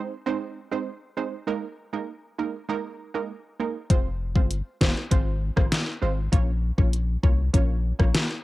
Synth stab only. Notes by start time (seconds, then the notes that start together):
Already playing: G#3 C4 D#4 C5
0.26 G#3 C4 D#4 C5
0.71 G#3 C4 D#4 C5
1.17 G#3 C4 D#4 C5
1.47 G#3 A#3 D#4 A#4
1.93 G#3 A#3 D#4 A#4
2.38 G#3 A#3 D#4 A#4
2.69 G#3 A#3 D#4 A#4
3.14 G#3 A#3 D#4 A#4
3.60 G#3 A#3 D#4 A#4
3.90 G#3 C4 F4 C5
4.35 G#3 C4 F4 C5
4.81 G#3 C4 F4 C5
5.11 G#3 C4 F4 C5
5.56 G#3 C4 F4 C5
6.02 G#3 C4 F4 C5
6.32 A#3 C#4 F4 C#5
6.78 A#3 C#4 F4 C#5
7.23 A#3 C#4 F4 C#5
7.54 A#3 C#4 F4 C#5
7.99 A#3 C#4 F4 C#5